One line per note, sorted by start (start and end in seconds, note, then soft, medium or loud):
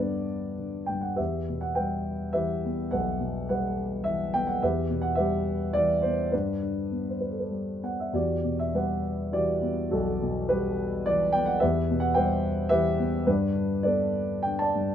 0.00 0.88 G2 medium
0.00 0.57 D3 soft
0.00 1.16 B3 soft
0.00 0.85 D4 soft
0.00 0.25 A4 medium
0.00 1.16 B4 soft
0.00 1.20 D5 medium
0.59 1.17 D3 soft
0.86 1.18 G2 soft
0.86 1.03 G5 medium
1.01 1.18 F#5 medium
1.16 2.89 E2 soft
1.16 2.01 G4 soft
1.16 1.74 B4 soft
1.16 1.63 E5 medium
1.49 2.61 B2 soft
1.61 1.77 F#5 medium
1.75 2.90 G3 soft
1.75 2.32 B4 soft
1.75 2.36 G5 medium
2.33 3.46 E3 soft
2.33 3.17 G4 soft
2.33 2.91 B4 medium
2.33 2.93 E5 medium
2.66 3.75 B3 soft
2.91 4.59 B1 soft
2.91 3.48 B4 soft
2.91 3.48 F#5 medium
3.20 4.30 B2 soft
3.49 4.59 G3 soft
3.49 4.31 B4 medium
3.49 4.08 F#5 medium
4.04 4.61 E3 soft
4.04 4.34 E5 medium
4.34 4.62 B3 soft
4.34 4.49 G5 medium
4.47 4.62 F#5 medium
4.62 6.29 E2 medium
4.62 5.16 G4 medium
4.62 5.16 B4 medium
4.62 5.06 E5 medium
4.90 6.00 B2 soft
5.01 5.17 F#5 medium
5.15 6.29 G3 medium
5.15 6.00 G4 medium
5.15 5.99 B4 medium
5.15 5.75 E5 medium
5.73 6.31 E3 medium
5.73 6.01 D5 medium
6.02 6.33 B3 medium
6.02 6.32 C5 medium
6.32 8.10 G2 medium
6.32 7.16 D4 soft
6.32 7.08 B4 medium
6.63 7.79 D3 soft
6.92 7.81 B3 soft
7.09 7.20 C5 soft
7.21 7.30 B4 soft
7.31 7.41 A4 soft
7.40 7.50 B4 soft
7.51 8.11 G3 soft
7.83 8.12 B3 soft
7.83 7.97 F#5 medium
8.00 8.15 E5 soft
8.13 9.87 E2 medium
8.13 8.99 F#4 medium
8.13 8.99 G4 soft
8.13 8.56 D5 medium
8.44 9.58 B2 soft
8.59 8.74 E5 medium
8.74 9.87 G3 soft
8.74 9.58 B4 soft
8.74 9.35 F#5 medium
9.32 10.46 E3 soft
9.32 9.89 F#4 medium
9.32 10.16 G4 medium
9.32 9.93 D5 medium
9.62 10.74 B3 medium
9.91 11.58 B1 medium
9.91 10.48 F#4 medium
9.91 10.45 A4 medium
10.22 11.31 B2 soft
10.49 11.58 G3 soft
10.49 11.30 F#4 medium
10.49 11.30 G4 medium
10.49 11.07 B4 medium
11.06 11.60 E3 soft
11.06 11.34 D5 medium
11.32 11.61 B3 medium
11.32 11.47 G5 medium
11.46 11.61 F#5 medium
11.60 13.24 E2 medium
11.60 12.40 G4 medium
11.60 12.14 B4 medium
11.60 12.03 E5 medium
11.91 12.97 B2 medium
12.00 12.15 F#5 medium
12.14 13.25 G3 medium
12.14 12.69 B4 medium
12.14 12.95 C5 medium
12.14 12.72 G5 medium
12.69 13.26 E3 medium
12.69 13.23 G4 medium
12.69 13.23 B4 medium
12.69 13.28 E5 loud
13.00 13.27 B3 medium
13.27 14.74 G2 medium
13.27 14.10 D4 medium
13.27 13.81 B4 medium
13.56 14.44 D3 soft
13.83 14.95 B3 soft
13.83 14.70 A4 medium
13.83 14.70 B4 medium
13.83 14.40 D5 medium
14.43 14.95 D3 soft
14.43 14.59 G5 medium
14.59 14.95 D5 medium
14.59 14.95 A5 medium
14.75 14.95 G2 soft